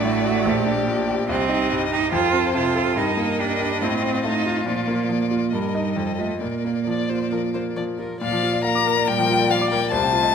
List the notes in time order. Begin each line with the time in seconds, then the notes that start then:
Already playing: A1 A3 D4 F#4 D5
0.04 A2
0.25 F#4
0.45 A#1 G4
0.66 D4
0.87 A#2
1.08 G4
1.28 C2 C4 G4 D#5
1.49 D#4
1.70 G2
1.92 D#4 G4
2.12 F2 F4 A4 C5
2.33 C4
2.54 C3 F4
2.75 A4
2.96 G2 D#4 A#4 D#5
3.17 A#3
3.39 G3 D4
3.59 G4
3.81 A2 C4 F4
4.02 C4
4.24 A3 D#4
4.46 F4
4.66 A#2 F3 D5
4.88 A#3
5.09 F3 A#3
5.31 F4
5.52 G2 G3 A#4 D#5
5.75 D#4 D#5
5.96 F2 A4
6.19 A3 F4 D#5
6.41 A#2 A#3 A#4 D5
6.65 A#3
6.87 F3 D5
7.09 F4 C5
7.32 F3 A#4
7.54 A#3 C5
7.76 F3 D5
7.99 F4 A#4
8.20 A#2 F3 D5 F5
8.32 F3
8.43 F4
8.53 D5
8.64 A#3 A#4 F5 A#5
8.75 D6
8.86 A#4
8.97 D5
9.07 A#2 G3 G5
9.18 F3
9.30 F4
9.39 D5
9.50 F3 D5 F5
9.61 D6
9.70 G3 A#4 G5
9.81 D5
9.91 C2 A3 C5 A5
10.03 C3
10.13 F4
10.23 D#5